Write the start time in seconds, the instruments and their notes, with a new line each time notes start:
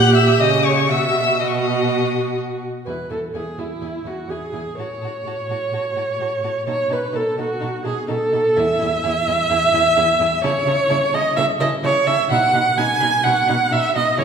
Already playing: cello A#2, viola G4, violin F#5 F#6
0.15 violin E5 E6
0.39 cello C#3, violin D#5 D#6
0.65 violin C#5 C#6
0.89 cello B2, viola F#4, violin E5 E6
1.39 viola F#4, violin D#5 D#6
1.48 violin C#6
1.55 violin D#6
2.86 cello E2, violin E4 G#5, viola B4
3.10 cello E2, violin E4 G#5, viola A4
3.34 cello E2, violin E4 G#5, viola G#4
3.58 cello E2, viola E4, violin E4 G#5
3.81 cello E2, violin E4 G#5
4.04 cello E2, violin E4 G#5, viola F#4
4.28 cello E2, violin E4 G#5, viola G#4
4.53 cello E2, violin E4 G#5
4.78 cello A2, violin F#4 A5, viola C#5
5.01 cello A2, violin F#4 A5
5.25 cello A2, violin F#4 A5
5.49 cello A2, violin F#4 A5
5.72 cello A2, violin F#4 A5
5.96 cello A2, violin F#4 A5
6.19 cello A2, violin F#4 A5
6.43 cello A2, violin F#4 A5
6.67 cello B2, violin D#4 A5, viola C#5
6.90 cello B2, violin D#4 A5, viola B4
7.13 cello B2, violin D#4 A5, viola A4
7.38 cello B2, violin D#4 A5, viola F#4
7.60 cello B2, violin D#4 A5
7.84 cello B2, violin D#4 A5, viola G#4
8.08 cello B2, violin D#4 A5, viola A4
8.32 cello B2, violin D#4 A5
8.57 cello E2, violin E4 G#5, viola E5
8.79 cello E2, violin E4 G#5
9.03 cello E2, violin E4 G#5
9.27 cello E2, violin E4 G#5
9.50 cello E2, violin E4 G#5
9.73 cello E2, violin E4 G#5
9.95 cello E2, violin E4 G#5
10.20 cello E2, violin E4 G#5
10.43 cello C#3, violin E4 A5, viola C#5
10.66 cello C#3, violin E4 A5
10.89 cello C#3, violin E4 A5
11.13 cello C#3, violin E4 A5, viola D#5
11.36 cello C#3, violin E4 A5, viola E5
11.60 cello C#3, violin E4 A5, viola D#5
11.83 cello C#3, violin E4 A5, viola C#5
12.06 cello C#3, violin E4 A5, viola E5
12.29 cello B2, violin D#4 B5, viola F#5
12.54 cello B2, violin D#4 B5
12.77 cello B2, violin D#4 B5, viola G#5
13.00 cello B2, violin D#4 B5
13.23 cello B2, violin D#4 B5, viola F#5
13.47 cello B2, violin D#4 B5
13.71 cello B2, violin D#4 B5, viola E5
13.94 cello B2, violin D#4 B5, viola D#5
14.17 cello C#3, violin E4 G#5, viola C#5